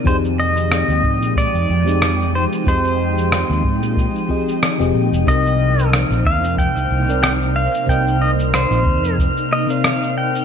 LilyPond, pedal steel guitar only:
\new Staff \with { instrumentName = "Pedal steel guitar" } { \time 4/4 \key c \minor \tempo 4 = 92 c''8 ees''4. d''4. c''8 | c''2. r4 | ees''4 r8 f''8 g''4 g''8 f''8 | g''8 ees''8 c''4 r8 ees''16 f''8. g''8 | }